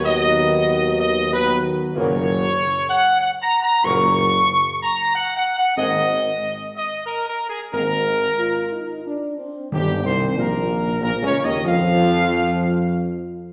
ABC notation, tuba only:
X:1
M:3/4
L:1/8
Q:1/4=93
K:Ablyd
V:1 name="Tuba" clef=bass
^D,,6 | _G,,,2 z4 | _G,,,2 z4 | A,,,2 z4 |
A,,,2 z4 | [K:Ebmix] G,,, C,, B,,,2 (3B,,, D,, E,, | F,,4- F,, z |]